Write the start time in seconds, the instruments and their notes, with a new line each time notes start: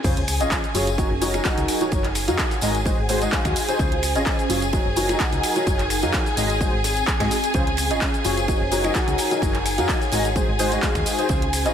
0.04 fm bass C#2, grand piano C#3 C#4 F4 G#4 C5, ambient pad C#4, violin section G#4 G#5, kick, crash, ride, tambourine, sub drop, shaker
0.17 closed hi-hat
0.28 finger snap, open hi-hat, ride, tambourine, shaker
0.40 fm bass G#1, grand piano C#3 C#4 F4 G#4 D#5, closed hi-hat, tambourine, shaker
0.47 ambient pad F5
0.51 kick, snare, clap, ride, tambourine, shaker
0.64 closed hi-hat, shaker
0.75 fm bass F#1, grand piano F#3 C#4 F4 G#4 C#5, open hi-hat, ride, tambourine, shaker
0.87 closed hi-hat, tambourine, shaker
0.98 grand piano F#3 D#4 F#4 A#4 C#5, ambient pad D#4, kick, ride, tambourine, shaker
1.11 fm bass F#1
1.21 grand piano F#3 D#4 F#4 A#4 C#5, open hi-hat, ride, tambourine, shaker
1.34 grand piano F#3 D#4 F#4 A#4 D#5, ambient pad A#4, finger snap, closed hi-hat, ride, tambourine, shaker
1.41 ambient pad F#5
1.45 grand piano F#3 D#4 F#4 A#4 F#5, kick, snare, clap, ride, tambourine, shaker
1.57 fm bass C#2, closed hi-hat, shaker
1.68 finger snap, open hi-hat, ride, tambourine, shaker
1.81 grand piano F#3 D#4 F#4 A#4 C#5, closed hi-hat, tambourine, shaker
1.92 fm bass F#1, grand piano F#3 D#4 F#4 A#4 C#5, kick, ride, tambourine, shaker
2.04 clap, closed hi-hat, ride
2.15 finger snap, open hi-hat, ride, tambourine, shaker
2.25 fm bass F#2, grand piano F#3 D#4 F#4 A#4 F5, ambient pad C#5, closed hi-hat, tambourine, shaker
2.38 kick, snare, clap, ride, tambourine, shaker
2.51 snare, closed hi-hat, shaker
2.61 fm bass G#1, grand piano G#3 D#4 F#4 A#4 D#5, open hi-hat, ride, tambourine, shaker
2.75 closed hi-hat, tambourine, shaker
2.85 grand piano G#3 D#4 F#4 G#4 C5, ambient pad F#4, kick, ride, tambourine, shaker
2.98 fm bass G#1, ambient pad C5
3.09 grand piano G#3 D#4 F#4 G#4 C5, open hi-hat, ride, tambourine, shaker
3.22 grand piano G#3 D#4 F#4 G#4 D#5, closed hi-hat, tambourine, shaker
3.28 ambient pad G#5, clap
3.32 grand piano G#3 D#4 F#4 G#4, kick, snare, ride, shaker
3.45 fm bass D#2, finger snap, kick, closed hi-hat, shaker
3.56 open hi-hat, ride, tambourine, shaker
3.68 grand piano D#4 F#4 G#4 C5, closed hi-hat, tambourine, shaker
3.79 fm bass C#2, grand piano C#3 C#4 F4 G#4 C5, ambient pad C#4, kick, ride, tambourine, shaker
3.92 closed hi-hat
4.03 finger snap, open hi-hat, ride, tambourine, shaker
4.15 fm bass G#1, grand piano C#3 C#4 F4 G#4 D#5, closed hi-hat, tambourine, shaker
4.22 ambient pad F5
4.26 kick, snare, clap, ride, tambourine, shaker
4.39 closed hi-hat, shaker
4.49 fm bass F#1, grand piano F#3 C#4 F4 G#4 C#5, open hi-hat, ride, tambourine, shaker
4.62 closed hi-hat, tambourine, shaker
4.73 grand piano F#3 D#4 F#4 A#4 C#5, ambient pad D#4, kick, ride, tambourine, shaker
4.86 fm bass F#1
4.94 grand piano F#3 D#4 F#4 A#4 C#5, ambient pad A#4, open hi-hat, ride, tambourine, shaker
5.08 grand piano F#3 D#4 F#4 A#4 D#5, finger snap, closed hi-hat, ride, tambourine, shaker
5.15 ambient pad F#5
5.20 grand piano F#3 D#4 F#4 A#4 F#5, kick, snare, clap, ride, tambourine, shaker
5.33 fm bass C#2, closed hi-hat, shaker
5.43 finger snap, open hi-hat, ride, tambourine, shaker
5.56 grand piano F#3 D#4 F#4 A#4 C#5, closed hi-hat, tambourine, shaker
5.66 fm bass F#1, grand piano F#3 D#4 F#4 A#4 C#5, kick, ride, tambourine, shaker
5.79 clap, closed hi-hat, ride, shaker
5.90 finger snap, open hi-hat, ride, tambourine, shaker
6.02 fm bass F#2, grand piano F#3 D#4 F#4 A#4 F5, closed hi-hat, tambourine, shaker
6.09 ambient pad C#5
6.13 kick, snare, clap, ride, tambourine, shaker
6.26 snare, closed hi-hat, shaker
6.37 fm bass G#1, grand piano G#3 D#4 F#4 A#4 D#5, open hi-hat, ride, tambourine, shaker
6.50 closed hi-hat, tambourine, shaker
6.61 grand piano G#3 D#4 F#4 G#4 C5, ambient pad C4, kick, ride, tambourine, shaker
6.73 fm bass G#1, ambient pad G#4
6.84 snare, open hi-hat, ride, tambourine, shaker
6.97 closed hi-hat, tambourine, shaker
7.07 kick, clap, ride, tambourine, shaker
7.20 fm bass G#2, grand piano G#3 D#4 F#4 G#4 D#5, finger snap, kick, snare, closed hi-hat, ride, shaker
7.31 open hi-hat, tambourine, shaker
7.43 closed hi-hat, ride, tambourine, shaker
7.54 fm bass C#2, grand piano C#3 C#4 F4 G#4 C5, ambient pad C#4, kick, ride, tambourine, shaker
7.67 closed hi-hat
7.77 finger snap, open hi-hat, ride, tambourine, shaker
7.90 fm bass G#1, grand piano C#3 C#4 F4 G#4 D#5, closed hi-hat, tambourine, shaker
7.97 ambient pad C5 F5
8.01 kick, snare, clap, ride, shaker
8.14 closed hi-hat, shaker
8.24 fm bass F#1, grand piano F#3 C#4 F4 G#4 C#5, open hi-hat, ride, tambourine, shaker
8.38 closed hi-hat, tambourine, shaker
8.48 grand piano F#3 D#4 F#4 A#4 C#5, ambient pad D#4, kick, ride, tambourine, shaker
8.60 fm bass F#1, ambient pad A#4
8.71 grand piano F#3 D#4 F#4 A#4 C#5, open hi-hat, ride, tambourine, shaker
8.83 grand piano F#3 D#4 F#4 A#4 D#5, finger snap, closed hi-hat, ride, tambourine, shaker
8.91 ambient pad F#5, ride
8.95 grand piano F#3 D#4 F#4 A#4 F#5, kick, snare, clap, tambourine, shaker
9.08 fm bass C#2, closed hi-hat, shaker
9.18 finger snap, open hi-hat, ride, tambourine, shaker
9.30 grand piano F#3 D#4 F#4 A#4 C#5, closed hi-hat, tambourine, shaker
9.42 fm bass F#1, grand piano F#3 D#4 F#4 A#4 C#5, kick, ride, tambourine, shaker
9.54 clap, closed hi-hat, ride
9.60 ambient pad C#5
9.66 finger snap, open hi-hat, ride, tambourine, shaker
9.78 fm bass F#2, grand piano F#3 D#4 F#4 A#4 F5, closed hi-hat, tambourine, shaker
9.89 kick, snare, clap, ride, shaker
10.01 snare, closed hi-hat, shaker
10.11 fm bass G#1, grand piano G#3 D#4 F#4 A#4 D#5, open hi-hat, ride, tambourine, shaker
10.25 closed hi-hat, tambourine, shaker
10.36 grand piano G#3 D#4 F#4 G#4 C5, ambient pad F#4, kick, ride, tambourine, shaker
10.48 fm bass G#1
10.56 grand piano G#3 D#4 F#4 G#4 C5, ambient pad C5, open hi-hat, ride, tambourine, shaker
10.72 grand piano G#3 D#4 F#4 G#4 D#5, closed hi-hat, tambourine, shaker
10.78 ambient pad G#5
10.82 grand piano G#3 D#4 F#4 G#4, kick, snare, clap, ride, tambourine, shaker
10.95 fm bass D#2, finger snap, kick, closed hi-hat, shaker
11.06 open hi-hat, ride, tambourine, shaker
11.18 grand piano D#4 F#4 G#4 C5, closed hi-hat, tambourine, shaker
11.29 fm bass C#2, grand piano C#3 C#4 F4 G#4 C5, ambient pad C#4, kick, ride, tambourine, shaker
11.42 closed hi-hat
11.53 finger snap, open hi-hat, ride, tambourine, shaker
11.65 fm bass G#1, grand piano C#3 C#4 F4 G#4 D#5, closed hi-hat, tambourine, shaker